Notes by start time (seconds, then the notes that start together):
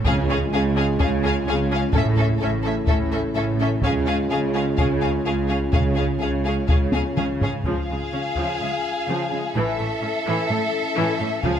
0.05 C#2 C#3 G#3 C#4 F4 G#4 F5, taiko
0.29 C#4 G#4 F5
0.53 C#2 C#3 C#4 G#4 F5
0.76 C#4 G#4 F5
1.00 C#2 C#3 C#4 G#4 F5, taiko
1.24 C#4 G#4 F5
1.47 C#2 C#3 C#4 G#4 F5
1.71 C#4 G#4 F5
1.93 A1 A2 A3 C#4 E4 A4 E5, taiko
2.16 C#4 A4 E5
2.40 A1 A2 C#4 A4 E5
2.63 C#4 A4 E5
2.87 A1 A2 C#4 A4 E5, taiko
3.12 C#4 A4 E5
3.35 A1 A2 C#4 A4 E5
3.60 C#4 A4 E5
3.82 C#2 C#3 G#3 C#4 F4 G#4 F5, taiko
4.07 C#4 G#4 F5
4.29 C#2 C#3 C#4 G#4 F5
4.55 C#4 G#4 F5
4.77 C#2 C#3 C#4 G#4 F5, taiko
5.02 C#4 G#4 F5
5.26 C#2 C#3 C#4 G#4 F5
5.49 C#4 G#4 F5
5.73 C#2 C#3 C#4 G#4 F5, taiko
5.96 C#4 G#4 F5
6.21 C#2 C#3 C#4 G#4 F5
6.46 C#4 G#4 F5
6.68 C#2 C#3 C#4 G#4 F5, taiko
6.93 C#4 G#4 F5, taiko high
7.16 C#2 C#3 C#4 G#4 F5, taiko mid
7.41 C#4 G#4 F5, taiko low
7.64 C#2 C#3 F3 C#4 F4 G#4 F5, taiko
7.89 C#3 G#3
8.12 C#3 C#4
8.35 C#3 F3, taiko
8.60 C#3 G#3
9.07 C#3 F3
9.30 C#3 G#3
9.54 A1 A2 E3 E4 A4 E5
9.78 A2 A3
10.02 A2 C#4
10.26 A2 E3
10.49 A2 A3
10.96 A2 E3
11.19 A2 A3
11.43 C#2 C#3 F3 C#4 F4 G#4 F5, taiko